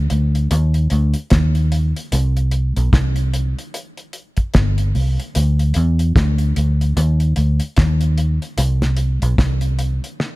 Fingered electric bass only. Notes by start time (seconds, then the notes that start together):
0.11 D2
0.51 D#2
0.92 D2
1.32 D#2
2.13 C2
2.77 B1
2.93 C2
4.55 G1
4.95 C2
5.36 D2
5.76 E2
6.16 D2
6.57 D2
6.97 D#2
7.37 D2
7.78 D#2
8.58 C2
9.22 B1
9.39 C2